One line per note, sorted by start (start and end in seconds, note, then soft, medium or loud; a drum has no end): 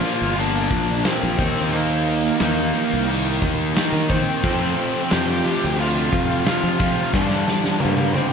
0.00 1.36 A#2 medium
0.00 0.34 A#2 medium
0.00 1.37 F3 loud
0.00 0.36 F3 medium
0.00 1.38 A#3 medium
0.00 0.36 A#3 medium
0.00 0.34 F4 medium
0.00 0.41 F5 loud
0.00 snare soft
0.00 open hi-hat medium
0.22 0.67 G1 medium
0.36 1.03 A#2 loud
0.36 1.03 F3 loud
0.36 1.04 A#3 loud
0.36 1.02 D4 medium
0.36 open hi-hat medium
0.40 1.09 D5 loud
0.71 1.02 A#1 medium
0.71 kick medium
0.71 open hi-hat medium
1.04 1.36 A#2 loud
1.04 1.37 F3 loud
1.04 1.37 A#3 loud
1.04 1.69 C4 medium
1.04 1.75 C5 medium
1.04 snare loud
1.04 open hi-hat medium
1.23 1.38 A#1 loud
1.39 2.29 D#2 loud
1.39 1.70 D#3 medium
1.39 1.71 A#3 loud
1.39 1.72 D#4 loud
1.39 kick loud
1.39 open hi-hat medium
1.71 2.40 D#3 medium
1.71 2.41 A#3 loud
1.71 2.37 A#3 medium
1.71 2.41 D#4 loud
1.71 2.38 A#4 medium
1.71 open hi-hat medium
2.07 open hi-hat medium
2.40 2.71 D#2 medium
2.40 2.72 D#3 loud
2.40 3.04 A#3 medium
2.40 2.73 A#3 medium
2.40 2.74 D#4 loud
2.40 3.06 A#4 medium
2.40 snare loud
2.40 open hi-hat medium
2.74 3.07 D#3 medium
2.74 3.08 A#3 medium
2.74 3.09 D#4 medium
2.74 open hi-hat medium
2.93 3.38 C2 medium
3.08 3.74 D#3 loud
3.08 3.74 A#3 loud
3.08 3.75 D#4 loud
3.08 open hi-hat medium
3.42 3.72 D#2 medium
3.42 kick medium
3.42 open hi-hat medium
3.75 4.08 D#3 loud
3.75 4.09 A#3 medium
3.75 4.09 D#4 loud
3.75 snare loud
3.75 open hi-hat medium
3.92 4.23 D#3 medium
4.09 4.41 D#3 medium
4.09 4.41 A#3 medium
4.09 5.07 C4 medium
4.09 4.42 D#4 loud
4.09 5.15 C5 loud
4.09 kick medium
4.09 open hi-hat medium
4.44 5.09 F2 medium
4.44 4.74 F2 loud
4.44 5.09 C3 loud
4.44 5.10 F3 loud
4.44 kick loud
4.44 crash medium
4.78 open hi-hat medium
5.10 5.43 F2 medium
5.10 5.42 F2 medium
5.10 5.43 C3 loud
5.10 5.44 F3 loud
5.10 5.75 G4 medium
5.10 5.76 G5 loud
5.10 snare loud
5.10 open hi-hat medium
5.44 5.76 F2 medium
5.44 5.76 C3 medium
5.44 5.77 F3 medium
5.44 snare soft
5.44 open hi-hat medium
5.64 6.09 D2 loud
5.77 6.45 F2 loud
5.77 6.45 C3 loud
5.77 6.47 F3 loud
5.77 6.43 F4 medium
5.77 open hi-hat medium
5.81 6.44 F5 loud
6.13 6.43 F2 medium
6.13 kick medium
6.13 open hi-hat medium
6.46 6.79 F2 loud
6.46 6.79 C3 loud
6.46 6.79 F3 loud
6.46 7.10 F4 medium
6.46 7.14 F5 loud
6.46 snare loud
6.46 open hi-hat medium
6.64 6.94 F3 medium
6.80 7.12 F2 medium
6.80 7.12 C3 medium
6.80 7.12 F3 loud
6.80 kick medium
6.80 open hi-hat medium
7.13 7.44 G2 loud
7.13 7.82 G2 medium
7.13 7.82 D3 loud
7.13 7.82 G3 loud
7.13 7.78 D4 medium
7.13 7.84 D5 medium
7.13 kick loud
7.13 snare medium
7.30 snare medium
7.48 snare medium
7.64 snare medium
7.80 8.14 G2 medium
7.80 8.15 D3 loud
7.80 8.16 G3 loud
7.80 8.13 A#3 medium
7.80 8.12 A#4 medium
7.80 high tom medium
7.85 8.13 G2 loud
7.97 high tom medium
8.12 8.33 G2 medium
8.12 8.33 C4 medium
8.12 8.33 C5 medium
8.12 high tom medium
8.17 8.33 D3 medium
8.17 8.33 G3 loud